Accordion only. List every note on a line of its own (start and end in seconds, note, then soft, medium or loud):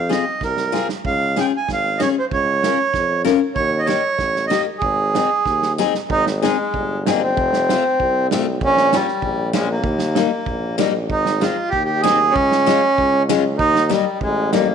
0.00 0.11 F5 medium
0.11 0.42 D#5 medium
0.44 0.87 A#4 medium
1.06 1.39 F5 loud
1.40 1.46 G5 medium
1.57 1.70 G#5 medium
1.73 2.00 F5 loud
1.98 2.09 C#5 medium
1.98 2.02 D#5 medium
2.19 2.25 C5 medium
2.33 3.22 C#5 medium
3.55 3.81 C#5 loud
3.78 3.87 D#5 medium
3.85 4.45 C#5 medium
4.47 4.62 D#5 medium
4.78 5.73 G#4 medium
6.11 6.25 D#4 loud
6.43 7.02 G#3 medium
7.05 7.22 A#3 medium
7.22 8.27 C4 loud
8.65 8.95 C#4 loud
8.94 9.50 G3 medium
9.56 9.69 G#3 medium
9.71 10.76 A#3 medium
11.11 11.44 D#4 medium
11.40 11.69 F4 medium
11.69 11.83 G4 medium
11.85 12.01 G4 medium
12.01 12.34 G#4 loud
12.31 13.23 C#4 loud
13.58 13.91 D#4 loud
13.91 14.18 G3 medium
14.22 14.51 G#3 loud
14.53 14.75 A#3 medium